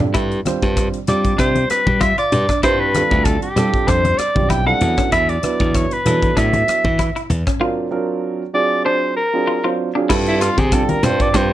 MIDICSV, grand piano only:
0, 0, Header, 1, 2, 480
1, 0, Start_track
1, 0, Tempo, 621762
1, 115, Time_signature, 4, 2, 24, 8
1, 8901, End_track
2, 0, Start_track
2, 0, Title_t, "Grand piano"
2, 0, Program_c, 0, 0
2, 0, Note_on_c, 0, 55, 69
2, 0, Note_on_c, 0, 60, 56
2, 0, Note_on_c, 0, 62, 64
2, 0, Note_on_c, 0, 65, 58
2, 0, Note_on_c, 0, 69, 71
2, 265, Note_off_c, 0, 55, 0
2, 267, Note_off_c, 0, 60, 0
2, 267, Note_off_c, 0, 62, 0
2, 268, Note_off_c, 0, 65, 0
2, 269, Note_off_c, 0, 69, 0
2, 355, Note_on_c, 0, 55, 74
2, 357, Note_on_c, 0, 60, 67
2, 359, Note_on_c, 0, 62, 67
2, 362, Note_on_c, 0, 65, 63
2, 366, Note_on_c, 0, 72, 80
2, 738, Note_off_c, 0, 55, 0
2, 738, Note_off_c, 0, 60, 0
2, 739, Note_off_c, 0, 62, 0
2, 741, Note_off_c, 0, 65, 0
2, 743, Note_off_c, 0, 72, 0
2, 832, Note_on_c, 0, 55, 59
2, 835, Note_on_c, 0, 60, 60
2, 836, Note_on_c, 0, 62, 57
2, 839, Note_on_c, 0, 65, 54
2, 843, Note_on_c, 0, 67, 64
2, 1584, Note_off_c, 0, 55, 0
2, 1585, Note_off_c, 0, 60, 0
2, 1586, Note_off_c, 0, 62, 0
2, 1587, Note_off_c, 0, 65, 0
2, 1589, Note_off_c, 0, 67, 0
2, 2034, Note_on_c, 0, 55, 62
2, 2036, Note_on_c, 0, 60, 58
2, 2037, Note_on_c, 0, 62, 54
2, 2041, Note_on_c, 0, 65, 55
2, 2041, Note_on_c, 0, 71, 71
2, 2226, Note_off_c, 0, 55, 0
2, 2227, Note_off_c, 0, 60, 0
2, 2227, Note_off_c, 0, 62, 0
2, 2229, Note_off_c, 0, 65, 0
2, 2229, Note_off_c, 0, 71, 0
2, 2280, Note_on_c, 0, 55, 63
2, 2283, Note_on_c, 0, 60, 65
2, 2283, Note_on_c, 0, 62, 62
2, 2286, Note_on_c, 0, 65, 68
2, 2288, Note_on_c, 0, 69, 78
2, 2660, Note_off_c, 0, 55, 0
2, 2661, Note_off_c, 0, 60, 0
2, 2661, Note_off_c, 0, 62, 0
2, 2663, Note_off_c, 0, 65, 0
2, 2664, Note_off_c, 0, 69, 0
2, 2754, Note_on_c, 0, 55, 66
2, 2756, Note_on_c, 0, 60, 64
2, 2759, Note_on_c, 0, 62, 64
2, 2761, Note_on_c, 0, 65, 57
2, 2764, Note_on_c, 0, 69, 79
2, 3223, Note_off_c, 0, 55, 0
2, 3224, Note_off_c, 0, 60, 0
2, 3226, Note_off_c, 0, 62, 0
2, 3227, Note_off_c, 0, 65, 0
2, 3228, Note_off_c, 0, 69, 0
2, 3358, Note_on_c, 0, 55, 64
2, 3362, Note_on_c, 0, 60, 61
2, 3364, Note_on_c, 0, 65, 56
2, 3366, Note_on_c, 0, 62, 62
2, 3371, Note_on_c, 0, 67, 72
2, 3544, Note_off_c, 0, 55, 0
2, 3546, Note_off_c, 0, 60, 0
2, 3547, Note_off_c, 0, 65, 0
2, 3548, Note_off_c, 0, 62, 0
2, 3550, Note_off_c, 0, 67, 0
2, 3596, Note_on_c, 0, 55, 74
2, 3600, Note_on_c, 0, 60, 68
2, 3600, Note_on_c, 0, 62, 63
2, 3605, Note_on_c, 0, 65, 69
2, 3605, Note_on_c, 0, 69, 77
2, 3704, Note_off_c, 0, 62, 0
2, 3708, Note_off_c, 0, 69, 0
2, 3709, Note_on_c, 0, 54, 75
2, 3711, Note_off_c, 0, 55, 0
2, 3713, Note_off_c, 0, 60, 0
2, 3714, Note_on_c, 0, 59, 59
2, 3715, Note_off_c, 0, 65, 0
2, 3716, Note_on_c, 0, 62, 66
2, 3719, Note_on_c, 0, 64, 64
2, 3720, Note_on_c, 0, 69, 71
2, 4104, Note_off_c, 0, 54, 0
2, 4106, Note_off_c, 0, 59, 0
2, 4107, Note_off_c, 0, 62, 0
2, 4109, Note_off_c, 0, 64, 0
2, 4109, Note_off_c, 0, 69, 0
2, 4187, Note_on_c, 0, 54, 62
2, 4192, Note_on_c, 0, 59, 63
2, 4193, Note_on_c, 0, 62, 58
2, 4195, Note_on_c, 0, 64, 63
2, 4196, Note_on_c, 0, 71, 63
2, 4574, Note_off_c, 0, 54, 0
2, 4576, Note_off_c, 0, 59, 0
2, 4577, Note_off_c, 0, 62, 0
2, 4577, Note_off_c, 0, 64, 0
2, 4578, Note_off_c, 0, 71, 0
2, 4671, Note_on_c, 0, 54, 65
2, 4675, Note_on_c, 0, 59, 57
2, 4675, Note_on_c, 0, 62, 55
2, 4680, Note_on_c, 0, 64, 56
2, 4684, Note_on_c, 0, 69, 66
2, 5423, Note_off_c, 0, 54, 0
2, 5425, Note_off_c, 0, 59, 0
2, 5426, Note_off_c, 0, 62, 0
2, 5428, Note_off_c, 0, 64, 0
2, 5430, Note_off_c, 0, 69, 0
2, 5866, Note_on_c, 0, 54, 79
2, 5867, Note_on_c, 0, 60, 74
2, 5870, Note_on_c, 0, 65, 74
2, 5871, Note_on_c, 0, 62, 75
2, 5875, Note_on_c, 0, 70, 85
2, 6062, Note_off_c, 0, 54, 0
2, 6063, Note_off_c, 0, 60, 0
2, 6064, Note_off_c, 0, 65, 0
2, 6065, Note_off_c, 0, 62, 0
2, 6066, Note_off_c, 0, 70, 0
2, 6105, Note_on_c, 0, 54, 89
2, 6106, Note_on_c, 0, 60, 75
2, 6109, Note_on_c, 0, 62, 73
2, 6112, Note_on_c, 0, 65, 73
2, 6112, Note_on_c, 0, 70, 95
2, 6493, Note_off_c, 0, 54, 0
2, 6493, Note_off_c, 0, 60, 0
2, 6495, Note_off_c, 0, 62, 0
2, 6496, Note_off_c, 0, 65, 0
2, 6496, Note_off_c, 0, 70, 0
2, 6588, Note_on_c, 0, 54, 69
2, 6593, Note_on_c, 0, 60, 66
2, 6594, Note_on_c, 0, 62, 63
2, 6595, Note_on_c, 0, 65, 63
2, 6597, Note_on_c, 0, 68, 79
2, 7060, Note_off_c, 0, 54, 0
2, 7063, Note_off_c, 0, 60, 0
2, 7063, Note_off_c, 0, 62, 0
2, 7064, Note_off_c, 0, 65, 0
2, 7065, Note_off_c, 0, 68, 0
2, 7205, Note_on_c, 0, 54, 62
2, 7207, Note_on_c, 0, 60, 64
2, 7209, Note_on_c, 0, 62, 62
2, 7211, Note_on_c, 0, 65, 59
2, 7214, Note_on_c, 0, 68, 77
2, 7388, Note_off_c, 0, 54, 0
2, 7389, Note_off_c, 0, 60, 0
2, 7390, Note_off_c, 0, 62, 0
2, 7391, Note_off_c, 0, 65, 0
2, 7393, Note_off_c, 0, 68, 0
2, 7441, Note_on_c, 0, 54, 70
2, 7443, Note_on_c, 0, 60, 66
2, 7446, Note_on_c, 0, 62, 61
2, 7448, Note_on_c, 0, 65, 67
2, 7450, Note_on_c, 0, 72, 71
2, 7626, Note_off_c, 0, 54, 0
2, 7627, Note_off_c, 0, 60, 0
2, 7629, Note_off_c, 0, 62, 0
2, 7629, Note_off_c, 0, 65, 0
2, 7631, Note_off_c, 0, 72, 0
2, 7681, Note_on_c, 0, 60, 64
2, 7682, Note_on_c, 0, 62, 65
2, 7683, Note_on_c, 0, 54, 79
2, 7687, Note_on_c, 0, 65, 72
2, 7689, Note_on_c, 0, 68, 72
2, 7769, Note_off_c, 0, 60, 0
2, 7770, Note_off_c, 0, 54, 0
2, 7770, Note_off_c, 0, 62, 0
2, 7772, Note_off_c, 0, 65, 0
2, 7773, Note_off_c, 0, 68, 0
2, 7792, Note_on_c, 0, 55, 65
2, 7795, Note_on_c, 0, 60, 63
2, 7797, Note_on_c, 0, 62, 59
2, 7800, Note_on_c, 0, 65, 59
2, 7802, Note_on_c, 0, 69, 74
2, 8177, Note_off_c, 0, 55, 0
2, 8178, Note_off_c, 0, 60, 0
2, 8179, Note_off_c, 0, 62, 0
2, 8180, Note_off_c, 0, 65, 0
2, 8181, Note_off_c, 0, 69, 0
2, 8277, Note_on_c, 0, 55, 68
2, 8279, Note_on_c, 0, 62, 66
2, 8282, Note_on_c, 0, 60, 65
2, 8283, Note_on_c, 0, 65, 59
2, 8287, Note_on_c, 0, 67, 75
2, 8468, Note_off_c, 0, 55, 0
2, 8468, Note_off_c, 0, 62, 0
2, 8470, Note_off_c, 0, 60, 0
2, 8471, Note_off_c, 0, 65, 0
2, 8473, Note_off_c, 0, 67, 0
2, 8521, Note_on_c, 0, 55, 74
2, 8525, Note_on_c, 0, 60, 64
2, 8526, Note_on_c, 0, 62, 67
2, 8526, Note_on_c, 0, 65, 68
2, 8532, Note_on_c, 0, 67, 81
2, 8710, Note_off_c, 0, 55, 0
2, 8711, Note_off_c, 0, 60, 0
2, 8712, Note_off_c, 0, 62, 0
2, 8712, Note_off_c, 0, 65, 0
2, 8715, Note_off_c, 0, 67, 0
2, 8756, Note_on_c, 0, 55, 73
2, 8759, Note_on_c, 0, 60, 66
2, 8759, Note_on_c, 0, 62, 65
2, 8762, Note_on_c, 0, 65, 65
2, 8764, Note_on_c, 0, 67, 79
2, 8901, Note_off_c, 0, 55, 0
2, 8901, Note_off_c, 0, 60, 0
2, 8901, Note_off_c, 0, 62, 0
2, 8901, Note_off_c, 0, 65, 0
2, 8901, Note_off_c, 0, 67, 0
2, 8901, End_track
0, 0, End_of_file